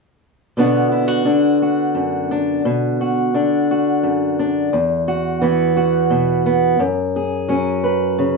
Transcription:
0.57 1.26 B2 soft
0.57 1.24 D3 soft
0.57 4.08 B3 soft
0.57 1.25 D4 soft
0.57 0.91 F#4 soft
0.92 1.08 E4 soft
1.08 1.60 F#4 soft
1.25 3.33 D3 soft
1.25 2.30 D4 soft
1.62 2.61 F#4 soft
1.95 2.60 F#2 soft
2.31 2.61 D4 soft
2.65 3.34 B2 medium
3.01 3.69 F#4 soft
3.34 4.73 D3 soft
3.34 4.38 D4 soft
3.71 4.70 F#4 soft
4.03 4.68 F#2 soft
4.39 4.69 D4 soft
4.73 6.79 E2 medium
5.08 5.76 F#4 soft
5.42 6.76 E3 soft
5.42 6.45 B3 soft
5.77 6.76 F#4 soft
6.10 6.76 B2 soft
6.46 6.80 B3 soft
6.79 8.37 F#2 medium
7.16 7.83 G#4 soft
7.48 8.37 F#3 soft
7.48 8.37 C#4 soft
7.84 8.37 B4 soft
8.18 8.37 C#3 soft

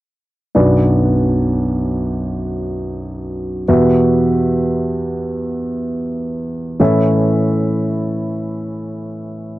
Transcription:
0.55 3.64 B1 soft
0.55 3.64 F#2 soft
0.55 3.63 B3 soft
0.55 3.63 D4 soft
0.55 3.64 F#4 soft
0.55 3.64 D5 soft
3.68 6.76 E2 soft
3.68 6.76 B2 soft
3.68 6.76 B3 soft
3.68 6.76 F#4 soft
3.68 6.76 G4 soft
3.68 6.77 E5 soft
6.80 9.59 A2 soft
6.80 9.59 E3 soft
6.80 9.59 C#4 soft
6.80 9.59 E4 soft
6.80 9.59 A4 soft
6.80 9.59 E5 medium

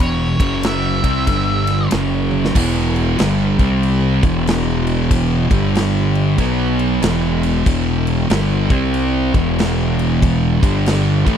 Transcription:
0.00 0.35 E1 medium
0.00 0.38 E2 medium
0.00 0.39 B2 medium
0.00 0.39 E3 medium
0.00 0.66 C#5 medium
0.00 kick loud
0.00 ride loud
0.39 0.99 F#1 medium
0.39 1.02 F#2 medium
0.39 1.03 C#3 medium
0.39 1.03 F#3 medium
0.39 kick loud
0.39 ride medium
0.63 1.89 E5 loud
0.63 snare loud
0.63 ride loud
1.04 1.26 C2 medium
1.04 1.27 C3 loud
1.04 1.27 G3 medium
1.04 1.27 C4 loud
1.04 kick loud
1.04 ride medium
1.27 1.87 G1 medium
1.27 1.90 G2 medium
1.27 1.91 D3 loud
1.27 1.91 G3 loud
1.27 kick medium
1.27 ride medium
1.67 snare soft
1.67 ride medium
1.91 2.52 F#1 loud
1.91 2.54 F#2 medium
1.91 2.54 C#3 medium
1.91 2.55 F#3 loud
1.91 snare loud
1.91 ride medium
2.31 high tom medium
2.45 snare medium
2.55 3.15 E1 loud
2.55 3.18 E2 medium
2.55 3.19 B2 loud
2.55 3.19 E3 loud
2.55 kick loud
2.55 crash loud
2.55 crash medium
2.96 crash medium
3.19 3.57 G1 medium
3.19 3.58 G2 loud
3.19 3.58 D3 medium
3.19 3.59 G3 loud
3.19 snare loud
3.19 crash medium
3.59 4.19 C2 medium
3.59 4.22 C3 loud
3.59 4.22 G3 loud
3.59 4.23 C4 loud
3.59 kick loud
3.59 crash medium
3.83 crash medium
4.23 5.47 E1 medium
4.23 5.50 E2 medium
4.23 5.50 B2 medium
4.23 5.50 E3 medium
4.23 kick loud
4.23 crash medium
4.47 snare loud
4.47 crash medium
4.87 crash medium
5.11 kick loud
5.11 crash medium
5.51 6.35 G1 medium
5.51 6.38 G2 medium
5.51 6.38 D3 medium
5.51 6.39 G3 medium
5.51 kick loud
5.51 crash medium
5.75 snare loud
5.75 crash medium
6.15 crash medium
6.38 6.98 B1 loud
6.38 7.02 B2 loud
6.38 7.02 F#3 loud
6.38 7.03 B3 loud
6.38 kick medium
6.38 crash medium
6.79 crash medium
7.02 7.62 E1 loud
7.02 7.66 E2 medium
7.02 7.66 B2 loud
7.02 7.67 E3 loud
7.02 snare loud
7.02 crash medium
7.43 crash medium
7.66 8.26 E1 medium
7.66 8.30 E2 loud
7.66 8.30 B2 loud
7.66 8.31 E3 loud
7.66 kick loud
7.66 crash medium
8.07 crash medium
8.30 8.67 G1 loud
8.30 8.69 G2 medium
8.30 8.69 D3 medium
8.30 8.69 G3 loud
8.30 snare loud
8.30 crash medium
8.70 9.30 C2 loud
8.70 9.33 C3 loud
8.70 9.33 G3 loud
8.70 9.34 C4 loud
8.70 kick loud
8.70 crash medium
8.94 crash medium
9.34 10.58 E1 loud
9.34 10.61 E2 medium
9.34 10.62 B2 medium
9.34 10.62 E3 medium
9.34 kick loud
9.34 crash medium
9.59 snare loud
9.59 crash medium
9.99 crash medium
10.22 kick loud
10.22 crash medium
10.62 11.22 G1 medium
10.62 11.25 G2 medium
10.62 11.26 D3 medium
10.62 11.26 G3 loud
10.62 kick loud
10.62 crash medium
10.86 snare loud
10.86 crash medium
11.26 11.37 A1 medium
11.26 11.37 A2 loud
11.26 11.37 E3 loud
11.26 11.37 A3 loud
11.26 kick loud
11.26 crash medium

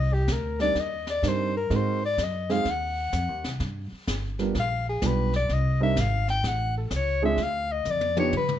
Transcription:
0.00 0.27 C2 medium
0.00 0.15 D#5 medium
0.13 0.34 G4 medium
0.28 0.74 D2 medium
0.28 kick soft
0.28 snare medium
0.28 hi-hat pedal medium
0.32 0.61 A#4 medium
0.59 0.74 G3 medium
0.59 0.74 C4 medium
0.59 0.74 D4 medium
0.59 0.74 D#4 medium
0.59 0.74 A#4 medium
0.59 0.81 D5 loud
0.59 snare soft
0.75 1.22 D#2 medium
0.75 brush sweep soft
0.75 kick soft
0.75 snare soft
0.80 1.09 D#5 medium
1.07 1.30 D5 medium
1.07 snare soft
1.22 1.69 G2 medium
1.22 1.51 G3 medium
1.22 1.52 C4 medium
1.22 1.52 D4 medium
1.22 1.52 D#4 medium
1.22 1.52 A#4 medium
1.22 kick soft
1.22 snare medium
1.22 hi-hat pedal soft
1.28 1.56 C5 medium
1.57 1.77 A#4 medium
1.70 2.16 G#2 medium
1.70 1.99 G#3 medium
1.70 1.99 C4 medium
1.70 1.99 D#4 medium
1.70 1.99 F#4 medium
1.70 1.99 A#4 medium
1.70 brush sweep soft
1.70 kick soft
1.70 snare soft
1.76 2.05 C5 medium
2.05 2.24 D5 medium
2.18 2.64 F#2 medium
2.18 kick soft
2.18 snare medium
2.18 hi-hat pedal medium
2.23 2.53 D#5 medium
2.49 2.64 G#3 medium
2.49 2.64 C4 medium
2.49 2.64 D#4 medium
2.49 2.64 F#4 medium
2.49 2.64 G#4 medium
2.49 2.72 F5 loud
2.49 snare soft
2.65 3.11 D#2 medium
2.65 brush sweep soft
2.65 kick soft
2.65 snare soft
2.70 3.63 F#5 medium
3.12 3.28 F2 medium
3.12 kick soft
3.12 snare medium
3.12 hi-hat pedal medium
3.28 3.44 D#2 medium
3.44 3.59 C2 medium
3.44 snare soft
3.60 3.89 G2 medium
3.60 brush sweep medium
3.60 kick soft
3.60 snare soft
3.92 muted upright bass stroke soft
4.07 4.53 G1 medium
4.07 kick soft
4.07 snare medium
4.07 hi-hat pedal soft
4.39 4.53 G3 medium
4.39 4.53 B3 medium
4.39 4.53 D4 medium
4.39 4.53 F4 medium
4.39 4.54 A#4 medium
4.39 snare soft
4.55 5.01 A#1 medium
4.55 brush sweep soft
4.55 kick soft
4.55 snare medium
4.59 4.87 F5 medium
4.89 5.08 G#4 medium
5.02 5.48 B1 loud
5.02 5.30 G3 medium
5.02 5.30 B3 medium
5.02 5.30 D4 soft
5.02 5.30 F4 medium
5.02 5.30 G4 medium
5.02 kick soft
5.02 snare medium
5.02 hi-hat pedal medium
5.06 5.36 B4 medium
5.33 5.55 D5 medium
5.33 snare soft
5.49 5.95 C2 medium
5.49 brush sweep soft
5.49 kick soft
5.49 snare soft
5.53 5.82 D#5 medium
5.80 5.95 G3 medium
5.80 5.95 C4 medium
5.80 5.95 D4 medium
5.80 5.95 D#4 medium
5.80 5.95 A#4 medium
5.80 6.02 E5 medium
5.96 6.42 G#1 loud
5.96 6.29 F5 medium
5.96 kick soft
5.96 snare medium
5.96 hi-hat pedal medium
6.28 6.49 G5 loud
6.28 snare soft
6.43 6.89 A1 medium
6.43 brush sweep medium
6.43 kick soft
6.43 snare medium
6.48 6.77 F#5 medium
6.77 6.93 A4 medium
6.90 7.37 C#2 medium
6.90 kick soft
6.90 snare medium
6.90 hi-hat pedal medium
6.96 7.24 C#5 medium
7.22 7.37 G#3 medium
7.22 7.37 C4 medium
7.22 7.37 D4 medium
7.22 7.37 F4 medium
7.22 7.37 G#4 medium
7.22 7.44 E5 medium
7.37 7.84 D2 medium
7.37 brush sweep soft
7.37 kick soft
7.37 snare soft
7.43 7.73 F5 loud
7.72 7.92 D#5 medium
7.85 8.32 F2 medium
7.85 hi-hat pedal medium
7.85 mid tom soft
7.90 8.19 D5 medium
8.01 high tom medium
8.16 8.31 B3 medium
8.16 8.31 D4 medium
8.16 8.31 D#4 medium
8.16 8.31 F4 medium
8.16 8.31 G4 medium
8.16 8.33 C#5 medium
8.16 high tom medium
8.33 8.59 G2 medium
8.33 mid tom medium
8.37 8.55 B4 medium
8.48 mid tom medium

